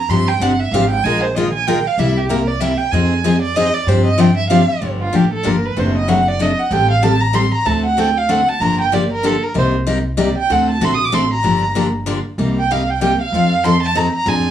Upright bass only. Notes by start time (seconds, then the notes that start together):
0.09 G2
0.40 G1
0.71 G#1
1.04 A#1
1.98 C2
2.92 F2
3.87 G2
4.81 G1
5.14 A1
5.46 G1
5.77 F#1
6.71 A1
7.66 D2
8.60 G1
9.55 C2
10.50 D2
10.80 A#1
11.13 A1
11.44 G1
12.38 C2
13.32 F2
14.26 F2